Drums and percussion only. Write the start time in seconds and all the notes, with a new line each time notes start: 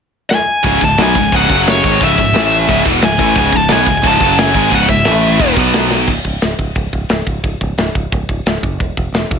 0.31 snare
0.64 kick, crash
0.81 kick, crash
0.98 snare, crash
1.15 kick, crash
1.32 kick, crash
1.49 kick, crash
1.67 snare, crash
1.84 kick, crash
2.00 kick, crash
2.18 kick, crash
2.35 snare, crash
2.52 crash
2.69 kick, crash
2.86 kick, crash
3.02 snare, crash
3.19 kick, crash
3.36 kick, crash
3.53 kick, crash
3.68 snare, crash
3.86 kick, crash
4.04 kick, crash
4.20 kick, crash
4.38 snare, crash
4.54 kick, crash
4.72 kick, crash
4.89 kick, crash
5.04 snare, crash
5.23 crash
5.40 kick, crash
5.57 kick, crash
5.73 snare, crash
5.91 snare
6.08 kick, crash
6.25 kick, open hi-hat
6.41 snare, open hi-hat
6.59 kick, open hi-hat
6.75 kick, open hi-hat
6.93 kick, open hi-hat
7.09 snare, open hi-hat
7.27 kick, open hi-hat
7.44 kick, open hi-hat
7.61 kick, open hi-hat
7.78 snare, open hi-hat
7.95 kick, open hi-hat
8.12 kick, open hi-hat
8.29 kick, open hi-hat
8.46 snare, open hi-hat
8.63 kick, open hi-hat
8.80 kick, open hi-hat
8.97 kick, open hi-hat
9.14 snare, open hi-hat
9.31 kick, open hi-hat